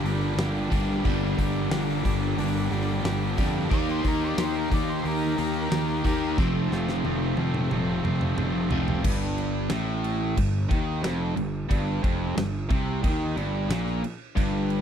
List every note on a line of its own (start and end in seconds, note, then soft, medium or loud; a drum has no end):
0.00 0.69 G2 medium
0.00 0.70 D3 medium
0.00 0.70 G3 loud
0.04 0.34 G1 loud
0.04 0.37 G2 medium
0.04 0.37 D3 medium
0.04 0.38 G3 medium
0.04 0.39 A#3 medium
0.04 0.38 D4 medium
0.04 0.40 G4 medium
0.04 open hi-hat medium
0.37 0.67 G1 medium
0.37 0.69 G2 medium
0.37 0.70 D3 medium
0.37 0.71 G3 medium
0.37 0.72 A#3 medium
0.37 0.71 D4 loud
0.37 0.72 G4 loud
0.37 snare loud
0.37 open hi-hat medium
0.71 1.01 G1 loud
0.71 1.04 G2 medium
0.71 1.04 D3 medium
0.71 1.05 G3 medium
0.71 1.05 A#3 medium
0.71 1.05 D4 loud
0.71 1.06 G4 loud
0.71 kick loud
0.71 open hi-hat medium
1.05 1.35 G1 loud
1.05 1.37 G2 loud
1.05 1.37 D3 loud
1.05 1.38 G3 loud
1.05 1.39 A#3 loud
1.05 1.38 D4 medium
1.05 1.40 G4 loud
1.05 kick loud
1.05 open hi-hat medium
1.38 1.68 G1 medium
1.38 1.69 G2 medium
1.38 1.70 D3 medium
1.38 1.71 G3 medium
1.38 1.71 A#3 medium
1.38 1.71 D4 medium
1.38 1.72 G4 loud
1.38 kick medium
1.38 open hi-hat medium
1.71 2.01 G1 medium
1.71 2.02 G2 medium
1.71 2.03 D3 loud
1.71 2.04 G3 loud
1.71 2.04 A#3 medium
1.71 2.04 D4 loud
1.71 2.05 G4 medium
1.71 snare loud
1.71 open hi-hat medium
2.03 2.35 G1 medium
2.03 2.36 G2 medium
2.03 2.36 D3 medium
2.03 2.37 G3 medium
2.03 2.37 A#3 medium
2.03 2.37 D4 medium
2.03 2.38 G4 loud
2.03 kick medium
2.03 open hi-hat medium
2.37 2.68 G1 loud
2.37 2.69 G2 loud
2.37 2.69 D3 loud
2.37 2.70 G3 loud
2.37 2.70 A#3 loud
2.37 2.71 D4 loud
2.37 2.71 G4 loud
2.37 open hi-hat loud
2.70 3.01 G1 loud
2.70 3.03 G2 medium
2.70 3.03 D3 medium
2.70 3.04 G3 medium
2.70 3.04 A#3 medium
2.70 3.04 D4 medium
2.70 3.05 G4 medium
2.70 open hi-hat medium
3.04 3.34 G1 medium
3.04 3.35 G2 medium
3.04 3.36 D3 medium
3.04 3.36 G3 medium
3.04 3.37 A#3 medium
3.04 3.37 D4 medium
3.04 3.38 G4 loud
3.04 snare loud
3.04 open hi-hat medium
3.37 3.68 F2 loud
3.37 3.69 G2 medium
3.37 3.69 D3 medium
3.37 3.69 G3 medium
3.37 3.69 A#3 medium
3.37 3.70 D4 medium
3.37 3.70 G4 loud
3.37 kick medium
3.37 open hi-hat medium
3.70 4.01 D#2 loud
3.70 4.02 D#3 medium
3.70 4.03 A#3 loud
3.70 4.03 D#4 loud
3.70 4.04 G4 loud
3.70 3.89 D5 loud
3.70 kick loud
3.70 open hi-hat medium
3.88 4.08 C5 loud
3.88 snare soft
4.03 4.34 D#2 medium
4.03 4.36 D#3 medium
4.03 4.37 A#3 medium
4.03 4.37 D#4 medium
4.03 4.37 G4 loud
4.03 kick medium
4.03 open hi-hat medium
4.08 4.22 A#4 medium
4.24 4.39 D5 loud
4.37 4.67 D#2 medium
4.37 4.69 D#3 medium
4.37 4.69 A#3 medium
4.37 4.70 D#4 medium
4.37 4.70 G4 medium
4.37 4.57 C5 medium
4.37 snare loud
4.37 open hi-hat medium
4.57 4.72 A#4 medium
4.70 5.01 D#2 medium
4.70 5.02 D#3 medium
4.70 5.03 A#3 medium
4.70 5.03 D#4 medium
4.70 5.03 G4 medium
4.70 4.89 D5 medium
4.70 kick medium
4.70 open hi-hat medium
4.89 5.05 C5 loud
5.04 5.34 D#2 loud
5.04 5.36 D#3 loud
5.04 5.37 A#3 loud
5.04 5.37 D#4 loud
5.04 5.37 G4 loud
5.04 open hi-hat medium
5.08 5.38 A#4 medium
5.37 5.68 D#2 medium
5.37 5.69 D#3 medium
5.37 5.69 A#3 medium
5.37 5.70 D#4 medium
5.37 5.71 G4 medium
5.37 6.36 A#4 medium
5.37 snare soft
5.37 open hi-hat medium
5.70 6.01 D#2 medium
5.70 6.04 D#3 medium
5.70 6.04 A#3 medium
5.70 6.04 D#4 medium
5.70 6.05 G4 loud
5.70 snare loud
5.70 open hi-hat medium
6.05 6.34 D#2 loud
6.05 6.36 D#3 medium
6.05 6.36 A#3 loud
6.05 6.36 D#4 loud
6.05 6.37 G4 loud
6.05 kick medium
6.05 open hi-hat medium
6.38 6.68 F1 loud
6.38 6.70 F2 medium
6.38 6.71 C3 loud
6.38 6.71 F3 medium
6.38 6.72 A3 medium
6.38 6.72 C4 loud
6.38 6.72 F4 loud
6.38 kick loud
6.38 snare medium
6.72 7.01 F1 medium
6.72 7.03 F2 medium
6.72 7.04 C3 medium
6.72 7.04 F3 medium
6.72 7.05 A3 medium
6.72 7.05 C4 medium
6.72 7.05 F4 medium
6.72 snare medium
6.89 snare medium
7.05 7.34 F1 medium
7.05 7.36 F2 medium
7.05 7.36 C3 loud
7.05 7.37 F3 medium
7.05 7.37 A3 loud
7.05 7.37 C4 medium
7.05 7.38 F4 loud
7.05 high tom medium
7.37 7.67 F1 medium
7.37 7.70 F2 medium
7.37 7.70 C3 medium
7.37 7.70 F3 medium
7.37 7.71 A3 medium
7.37 7.71 C4 medium
7.37 7.71 F4 loud
7.37 high tom medium
7.54 mid tom medium
7.71 8.01 F1 loud
7.71 8.02 F2 medium
7.71 8.03 C3 medium
7.71 8.03 F3 medium
7.71 8.03 A3 loud
7.71 8.03 C4 loud
7.71 8.04 F4 loud
7.71 mid tom loud
8.03 8.34 F1 medium
8.03 8.36 F2 medium
8.03 8.37 C3 medium
8.03 8.37 F3 medium
8.03 8.37 A3 medium
8.03 8.38 C4 medium
8.03 8.38 F4 medium
8.03 mid tom medium
8.21 mid tom medium
8.37 8.68 F1 medium
8.37 8.69 F2 medium
8.37 8.70 C3 medium
8.37 8.70 F3 medium
8.37 8.71 A3 medium
8.37 8.71 C4 loud
8.37 8.71 F4 medium
8.37 mid tom loud
8.70 9.01 F1 medium
8.70 9.02 F2 medium
8.70 9.02 C3 medium
8.70 9.02 F3 medium
8.70 9.03 A3 medium
8.70 9.03 C4 loud
8.70 9.03 F4 medium
8.70 floor tom loud
8.88 floor tom loud
9.04 9.67 G1 medium
9.04 9.70 G2 loud
9.04 kick loud
9.04 crash loud
9.04 crash medium
9.38 crash medium
9.70 10.33 A1 loud
9.70 10.36 A2 loud
9.70 snare loud
9.70 crash medium
10.04 crash medium
10.37 10.68 G1 medium
10.37 10.64 G2 medium
10.37 kick loud
10.37 crash medium
10.69 11.02 D#2 loud
10.69 11.02 D#3 loud
10.69 kick loud
10.69 crash medium
11.02 11.35 F1 loud
11.02 11.35 F2 loud
11.02 snare loud
11.02 crash medium
11.36 11.68 G1 medium
11.36 11.63 G2 medium
11.36 crash medium
11.69 12.01 G1 loud
11.69 12.02 G2 loud
11.69 kick loud
11.69 crash medium
12.03 12.35 F1 loud
12.03 12.36 F2 loud
12.03 kick loud
12.03 crash medium
12.37 12.68 G1 medium
12.37 12.63 G2 medium
12.37 snare loud
12.37 crash medium
12.70 13.01 C2 medium
12.70 13.02 C3 loud
12.70 kick loud
12.70 crash medium
13.03 13.35 D#2 loud
13.03 13.35 D#3 loud
13.03 kick loud
13.03 crash medium
13.36 13.68 G1 loud
13.36 13.69 G2 loud
13.36 crash medium
13.69 14.01 A#1 loud
13.69 14.02 A#2 loud
13.69 snare loud
13.69 crash medium
13.87 snare soft
14.03 muted distorted electric guitar stroke medium
14.03 muted fingered electric bass stroke soft
14.03 crash medium
14.36 14.81 G1 loud
14.36 14.81 G2 loud
14.36 kick loud
14.36 crash medium
14.70 crash medium